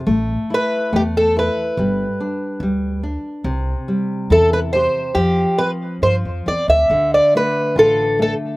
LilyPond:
<<
  \new Staff \with { instrumentName = "Twelve-string acoustic guitar" } { \time 2/4 \key a \minor \tempo 4 = 70 r8 b'8 g'16 a'16 b'8~ | b'4. r8 | r4 a'16 b'16 c''8 | g'8 b'8 c''8 d''16 e''16~ |
e''16 d''16 b'8 a'8 a'8 | }
  \new Staff \with { instrumentName = "Nylon-string guitar" } { \time 2/4 \key a \minor a8 e'8 a8 e'8 | g8 d'8 g8 d'8 | c8 g8 e'8 g'8 | f8 c'8 f8 c'8 |
d8 a8 f'8 a8 | }
  \new Staff \with { instrumentName = "Upright bass" } { \clef bass \time 2/4 \key a \minor a,,8 r8 e,4 | g,,8 r8 d,4 | c,8 r8 e,4 | f,8 r8 g,16 f,16 e,16 d,16 |
d,8 r8 a,,4 | }
>>